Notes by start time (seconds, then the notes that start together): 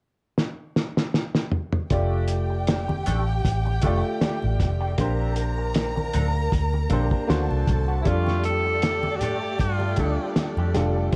0.38 snare
0.76 snare
0.97 snare
1.14 snare
1.35 snare
1.52 mid tom
1.73 mid tom
1.90 F1 A3 D4 F4 G4 D5 G5, kick, closed hi-hat, muted conga
2.28 closed hi-hat
2.50 muted clean electric guitar stroke
2.67 muted clean electric guitar stroke, snare, closed hi-hat
2.88 muted clean electric guitar stroke, muted conga, high conga
3.06 A1 A3 D4 A4, closed hi-hat, low conga
3.28 muted clean electric guitar stroke
3.45 A1, kick, closed hi-hat, muted conga
3.66 muted clean electric guitar stroke, muted conga
3.82 F1 A3 D4 F4 A4, kick, closed hi-hat, high conga
3.86 G4 D5
4.04 muted clean electric guitar stroke
4.21 A3 D4 G4, snare, closed hi-hat, high conga
4.42 A1, muted conga
4.60 F1, muted clean electric guitar stroke, kick, snare, closed hi-hat, high conga, low conga
4.81 A3 D4 G4
4.98 A#1 A#3 C4 D4 G4 A#4 C5 A#5, kick, closed hi-hat, muted conga
5.36 closed hi-hat
5.58 muted clean electric guitar stroke
5.74 muted clean electric guitar stroke, snare, closed hi-hat, muted conga
5.96 muted clean electric guitar stroke, high conga
6.13 D2 C4 D4 A4, closed hi-hat, low conga
6.35 muted clean electric guitar stroke
6.52 D2, kick, closed hi-hat, muted conga
6.73 muted clean electric guitar stroke, muted conga
6.90 A#1 A#3 C4 D4 G4 A4 C5, kick, closed hi-hat, high conga
7.11 muted clean electric guitar stroke, kick
7.27 D2 A#3 C4 D4 F#4 A4 C5 A5, snare, closed hi-hat, muted conga, high conga
7.50 C2, muted conga
7.67 C2, muted clean electric guitar stroke, kick, closed hi-hat, high conga, low conga
7.88 A#3 C4 F#4
8.02 G3 A3 D4 E4, closed hi-hat
8.06 F2 A3 D4 F4 G4 A4 D5, kick
8.27 snare, muted conga
8.44 A4, closed hi-hat
8.65 muted clean electric guitar stroke
8.82 muted clean electric guitar stroke, snare, closed hi-hat
9.03 muted clean electric guitar stroke, high conga
9.16 F#4
9.20 G2 A3 D4 G4 A4, closed hi-hat, low conga
9.43 muted clean electric guitar stroke
9.59 G2 F4, kick, closed hi-hat, muted conga
9.80 muted clean electric guitar stroke, muted conga
9.96 D2 G3 A3 D4 F4 A4, kick, closed hi-hat, high conga
10.01 A4
10.20 muted clean electric guitar stroke
10.36 muted clean electric guitar stroke, snare, closed hi-hat, muted conga, high conga
10.57 F2 A3 D4 G4, muted conga
10.74 F1 G3 D4 F4 A4, muted clean electric guitar stroke, snare, closed hi-hat, low conga
10.96 muted clean electric guitar stroke
11.11 G3 C4 C5, closed hi-hat